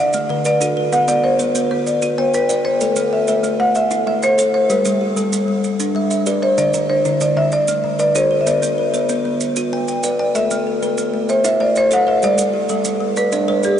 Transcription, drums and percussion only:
0.13 maracas medium
0.45 maracas medium
0.61 maracas medium
0.92 maracas medium
1.08 maracas medium
1.39 maracas medium
1.55 maracas medium
1.87 maracas medium
2.02 maracas medium
2.34 maracas medium
2.50 maracas medium
2.81 maracas medium
2.96 maracas medium
3.28 maracas medium
3.44 maracas medium
3.75 maracas soft
3.91 maracas medium
4.23 maracas medium
4.39 maracas medium
4.70 maracas medium
4.85 maracas medium
5.17 maracas medium
5.33 maracas medium
5.64 maracas medium
5.80 maracas medium
6.11 maracas medium
6.26 maracas medium
6.58 maracas medium
6.74 maracas medium
7.05 maracas medium
7.21 maracas medium
7.52 maracas medium
7.68 maracas medium
7.99 maracas medium
8.15 maracas medium
8.47 maracas medium
8.63 maracas medium
8.94 maracas medium
9.09 maracas medium
9.41 maracas medium
9.56 maracas medium
9.88 maracas medium
10.03 maracas medium
10.35 maracas medium
10.51 maracas medium
10.83 maracas medium
10.98 maracas medium
11.29 maracas medium
11.44 maracas medium
11.76 maracas medium
11.91 maracas medium
12.23 maracas medium
12.38 maracas medium
12.69 maracas medium
12.85 maracas medium
13.16 maracas medium
13.32 maracas medium
13.63 maracas medium

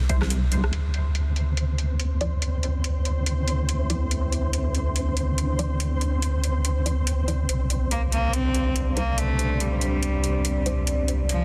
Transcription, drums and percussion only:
0.09 kick medium
0.09 closed hi-hat medium
0.22 cross-stick medium
0.22 snare soft
0.22 high conga medium
0.30 closed hi-hat medium
0.52 closed hi-hat medium
0.52 high conga medium
0.64 cross-stick medium
0.73 closed hi-hat medium
0.94 closed hi-hat soft
1.15 closed hi-hat medium
1.36 closed hi-hat soft
1.57 closed hi-hat medium
1.78 closed hi-hat soft
2.00 closed hi-hat medium
2.21 closed hi-hat soft
2.42 closed hi-hat medium
2.63 closed hi-hat soft
2.84 closed hi-hat medium
3.05 closed hi-hat soft
3.26 closed hi-hat medium
3.48 closed hi-hat soft
3.69 closed hi-hat medium
3.90 closed hi-hat medium
4.11 closed hi-hat medium
4.32 closed hi-hat soft
4.53 closed hi-hat medium
4.75 closed hi-hat soft
4.96 closed hi-hat medium
5.17 closed hi-hat soft
5.38 closed hi-hat medium
5.59 closed hi-hat soft
5.80 closed hi-hat medium
6.01 closed hi-hat soft
6.22 closed hi-hat medium
6.44 closed hi-hat soft
6.65 closed hi-hat medium
6.86 closed hi-hat soft
7.07 closed hi-hat medium
7.28 closed hi-hat soft
7.49 closed hi-hat medium
7.70 closed hi-hat soft
7.91 closed hi-hat medium
8.12 closed hi-hat soft
8.33 closed hi-hat medium
8.54 closed hi-hat soft
8.76 closed hi-hat medium
8.97 closed hi-hat soft
9.18 closed hi-hat medium
9.39 closed hi-hat soft
9.60 closed hi-hat medium
9.81 closed hi-hat soft
10.03 closed hi-hat medium
10.24 closed hi-hat soft
10.45 closed hi-hat medium
10.66 closed hi-hat soft
10.87 closed hi-hat medium
11.08 closed hi-hat soft
11.29 closed hi-hat medium

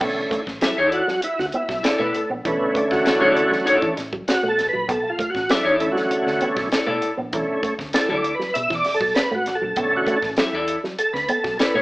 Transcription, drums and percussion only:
0.01 kick loud
0.01 crash medium
0.31 kick loud
0.31 closed hi-hat medium
0.47 kick medium
0.47 snare soft
0.61 snare loud
0.61 closed hi-hat medium
0.92 closed hi-hat medium
1.08 snare soft
1.22 closed hi-hat loud
1.39 snare soft
1.52 closed hi-hat medium
1.69 kick medium
1.69 snare soft
1.84 snare medium
1.84 closed hi-hat medium
2.14 closed hi-hat medium
2.45 kick loud
2.45 closed hi-hat medium
2.75 kick loud
2.75 closed hi-hat medium
2.91 kick medium
2.91 snare soft
3.06 snare loud
3.06 closed hi-hat medium
3.37 closed hi-hat medium
3.52 snare soft
3.67 closed hi-hat loud
3.82 kick loud
3.97 snare soft
3.97 closed hi-hat medium
4.13 kick medium
4.28 snare loud
4.28 closed hi-hat medium
4.59 snare soft
4.59 closed hi-hat medium
4.89 kick loud
4.89 closed hi-hat medium
5.19 kick loud
5.19 closed hi-hat medium
5.35 kick medium
5.35 snare soft
5.49 snare loud
5.49 closed hi-hat medium
5.80 closed hi-hat medium
5.96 snare soft
6.11 closed hi-hat loud
6.27 snare soft
6.41 closed hi-hat medium
6.57 kick loud
6.57 snare soft
6.72 snare medium
6.72 closed hi-hat medium
7.02 closed hi-hat medium
7.33 kick loud
7.33 closed hi-hat medium
7.63 kick loud
7.63 closed hi-hat medium
7.79 kick medium
7.79 snare soft
7.93 snare loud
7.93 closed hi-hat medium
8.24 closed hi-hat medium
8.41 snare soft
8.55 closed hi-hat loud
8.70 kick loud
8.70 snare soft
8.84 snare soft
8.84 open hi-hat medium
9.01 kick loud
9.15 snare loud
9.15 closed hi-hat medium
9.46 snare soft
9.46 closed hi-hat medium
9.76 kick loud
9.76 closed hi-hat medium
10.07 kick medium
10.07 closed hi-hat medium
10.23 kick medium
10.23 snare soft
10.37 snare loud
10.37 closed hi-hat medium
10.68 closed hi-hat medium
10.84 snare soft
10.99 closed hi-hat loud
11.15 snare soft
11.29 closed hi-hat medium
11.44 kick medium
11.44 snare soft
11.59 snare loud
11.59 closed hi-hat medium

